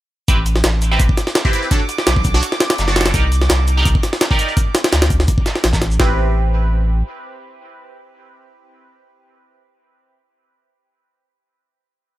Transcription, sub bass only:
0, 0, Header, 1, 2, 480
1, 0, Start_track
1, 0, Tempo, 357143
1, 380, Time_signature, 4, 2, 24, 8
1, 16370, End_track
2, 0, Start_track
2, 0, Title_t, "Sub bass"
2, 0, Program_c, 0, 38
2, 379, Note_on_c, 0, 33, 97
2, 842, Note_off_c, 0, 33, 0
2, 861, Note_on_c, 0, 33, 89
2, 1323, Note_off_c, 0, 33, 0
2, 1339, Note_on_c, 0, 33, 98
2, 1455, Note_off_c, 0, 33, 0
2, 2781, Note_on_c, 0, 35, 88
2, 3243, Note_off_c, 0, 35, 0
2, 3742, Note_on_c, 0, 30, 105
2, 4203, Note_off_c, 0, 30, 0
2, 4221, Note_on_c, 0, 36, 102
2, 4683, Note_off_c, 0, 36, 0
2, 4702, Note_on_c, 0, 36, 90
2, 5163, Note_off_c, 0, 36, 0
2, 5182, Note_on_c, 0, 36, 99
2, 5297, Note_off_c, 0, 36, 0
2, 6621, Note_on_c, 0, 38, 90
2, 7083, Note_off_c, 0, 38, 0
2, 7580, Note_on_c, 0, 33, 106
2, 8042, Note_off_c, 0, 33, 0
2, 8059, Note_on_c, 0, 33, 97
2, 9446, Note_off_c, 0, 33, 0
2, 16370, End_track
0, 0, End_of_file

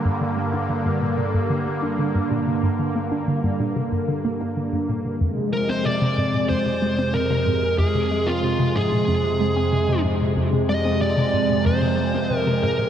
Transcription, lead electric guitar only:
0, 0, Header, 1, 2, 480
1, 0, Start_track
1, 0, Tempo, 645161
1, 36, Time_signature, 4, 2, 24, 8
1, 9593, End_track
2, 0, Start_track
2, 0, Title_t, "Lead electric guitar"
2, 0, Program_c, 0, 29
2, 4114, Note_on_c, 0, 70, 90
2, 4234, Note_on_c, 0, 72, 94
2, 4239, Note_off_c, 0, 70, 0
2, 4353, Note_off_c, 0, 72, 0
2, 4353, Note_on_c, 0, 74, 101
2, 4828, Note_off_c, 0, 74, 0
2, 4831, Note_on_c, 0, 72, 101
2, 5311, Note_on_c, 0, 70, 88
2, 5328, Note_off_c, 0, 72, 0
2, 5788, Note_off_c, 0, 70, 0
2, 5791, Note_on_c, 0, 68, 91
2, 6151, Note_on_c, 0, 65, 88
2, 6165, Note_off_c, 0, 68, 0
2, 6516, Note_on_c, 0, 68, 83
2, 6524, Note_off_c, 0, 65, 0
2, 7446, Note_off_c, 0, 68, 0
2, 7955, Note_on_c, 0, 75, 105
2, 8191, Note_off_c, 0, 75, 0
2, 8194, Note_on_c, 0, 74, 105
2, 8673, Note_off_c, 0, 74, 0
2, 8676, Note_on_c, 0, 72, 93
2, 9197, Note_off_c, 0, 72, 0
2, 9197, Note_on_c, 0, 70, 93
2, 9399, Note_off_c, 0, 70, 0
2, 9399, Note_on_c, 0, 70, 81
2, 9593, Note_off_c, 0, 70, 0
2, 9593, End_track
0, 0, End_of_file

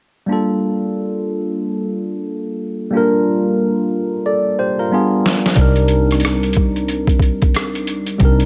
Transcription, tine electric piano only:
0, 0, Header, 1, 2, 480
1, 0, Start_track
1, 0, Key_signature, -2, "minor"
1, 0, Tempo, 659341
1, 210, Time_signature, 4, 2, 24, 8
1, 6155, End_track
2, 0, Start_track
2, 0, Title_t, "Tine electric piano"
2, 0, Program_c, 0, 4
2, 192, Note_on_c, 0, 55, 54
2, 204, Note_on_c, 0, 58, 48
2, 214, Note_on_c, 0, 62, 49
2, 227, Note_on_c, 0, 65, 49
2, 237, Note_on_c, 0, 69, 59
2, 328, Control_c, 0, 64, 127
2, 2092, Note_off_c, 0, 55, 0
2, 2098, Note_off_c, 0, 58, 0
2, 2103, Note_off_c, 0, 62, 0
2, 2109, Note_off_c, 0, 65, 0
2, 2114, Note_off_c, 0, 69, 0
2, 2116, Note_on_c, 0, 55, 58
2, 2129, Note_on_c, 0, 58, 50
2, 2138, Note_on_c, 0, 62, 52
2, 2150, Note_on_c, 0, 65, 50
2, 2162, Note_on_c, 0, 70, 62
2, 3081, Note_off_c, 0, 65, 0
2, 3087, Note_off_c, 0, 70, 0
2, 3101, Note_on_c, 0, 74, 51
2, 3105, Note_on_c, 0, 69, 41
2, 3324, Note_off_c, 0, 74, 0
2, 3326, Note_off_c, 0, 69, 0
2, 3342, Note_on_c, 0, 72, 60
2, 3346, Note_on_c, 0, 67, 50
2, 3476, Note_off_c, 0, 72, 0
2, 3478, Note_off_c, 0, 67, 0
2, 3489, Note_on_c, 0, 70, 53
2, 3495, Note_on_c, 0, 65, 50
2, 3534, Note_off_c, 0, 55, 0
2, 3541, Note_off_c, 0, 58, 0
2, 3545, Note_off_c, 0, 62, 0
2, 3577, Note_on_c, 0, 55, 58
2, 3581, Control_c, 0, 64, 0
2, 3583, Note_on_c, 0, 59, 54
2, 3584, Note_off_c, 0, 65, 0
2, 3586, Note_on_c, 0, 62, 51
2, 3592, Note_on_c, 0, 65, 51
2, 3599, Note_on_c, 0, 68, 63
2, 3708, Control_c, 0, 64, 127
2, 3711, Note_off_c, 0, 70, 0
2, 4032, Note_off_c, 0, 55, 0
2, 4041, Note_on_c, 0, 55, 55
2, 4052, Note_off_c, 0, 62, 0
2, 4053, Note_on_c, 0, 60, 48
2, 4056, Note_off_c, 0, 59, 0
2, 4060, Control_c, 0, 64, 0
2, 4060, Note_on_c, 0, 62, 50
2, 4061, Note_off_c, 0, 65, 0
2, 4064, Note_off_c, 0, 68, 0
2, 4074, Note_on_c, 0, 63, 49
2, 4086, Note_on_c, 0, 70, 60
2, 4173, Control_c, 0, 64, 127
2, 5937, Note_off_c, 0, 55, 0
2, 5943, Note_off_c, 0, 60, 0
2, 5946, Note_off_c, 0, 62, 0
2, 5953, Note_off_c, 0, 63, 0
2, 5957, Note_on_c, 0, 55, 58
2, 5959, Note_off_c, 0, 70, 0
2, 5968, Note_on_c, 0, 60, 50
2, 5979, Note_on_c, 0, 62, 54
2, 5991, Note_on_c, 0, 63, 49
2, 6004, Note_on_c, 0, 70, 61
2, 6155, Note_off_c, 0, 55, 0
2, 6155, Note_off_c, 0, 60, 0
2, 6155, Note_off_c, 0, 62, 0
2, 6155, Note_off_c, 0, 63, 0
2, 6155, Note_off_c, 0, 70, 0
2, 6155, End_track
0, 0, End_of_file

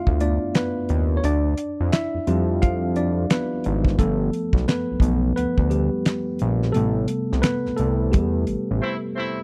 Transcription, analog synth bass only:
0, 0, Header, 1, 2, 480
1, 0, Start_track
1, 0, Tempo, 689655
1, 853, Time_signature, 4, 2, 24, 8
1, 6566, End_track
2, 0, Start_track
2, 0, Title_t, "Analog synth bass"
2, 0, Program_c, 0, 38
2, 56, Note_on_c, 0, 38, 83
2, 269, Note_off_c, 0, 38, 0
2, 626, Note_on_c, 0, 39, 96
2, 838, Note_off_c, 0, 39, 0
2, 862, Note_on_c, 0, 38, 101
2, 1076, Note_off_c, 0, 38, 0
2, 1256, Note_on_c, 0, 41, 80
2, 1332, Note_off_c, 0, 41, 0
2, 1493, Note_on_c, 0, 41, 49
2, 1527, Note_off_c, 0, 41, 0
2, 1582, Note_on_c, 0, 41, 84
2, 2270, Note_off_c, 0, 41, 0
2, 2548, Note_on_c, 0, 32, 95
2, 2759, Note_off_c, 0, 32, 0
2, 2783, Note_on_c, 0, 31, 106
2, 2997, Note_off_c, 0, 31, 0
2, 3161, Note_on_c, 0, 35, 81
2, 3243, Note_off_c, 0, 35, 0
2, 3420, Note_on_c, 0, 35, 48
2, 3451, Note_off_c, 0, 35, 0
2, 3485, Note_on_c, 0, 35, 89
2, 3707, Note_off_c, 0, 35, 0
2, 3751, Note_on_c, 0, 38, 49
2, 3807, Note_off_c, 0, 38, 0
2, 3889, Note_on_c, 0, 38, 86
2, 4105, Note_off_c, 0, 38, 0
2, 4467, Note_on_c, 0, 34, 98
2, 4679, Note_off_c, 0, 34, 0
2, 4707, Note_on_c, 0, 33, 102
2, 4919, Note_off_c, 0, 33, 0
2, 5099, Note_on_c, 0, 36, 85
2, 5173, Note_off_c, 0, 36, 0
2, 5338, Note_on_c, 0, 36, 45
2, 5370, Note_off_c, 0, 36, 0
2, 5425, Note_on_c, 0, 36, 97
2, 5675, Note_on_c, 0, 40, 93
2, 5685, Note_off_c, 0, 36, 0
2, 5883, Note_off_c, 0, 40, 0
2, 5904, Note_on_c, 0, 33, 49
2, 5962, Note_off_c, 0, 33, 0
2, 6062, Note_on_c, 0, 33, 84
2, 6134, Note_off_c, 0, 33, 0
2, 6566, End_track
0, 0, End_of_file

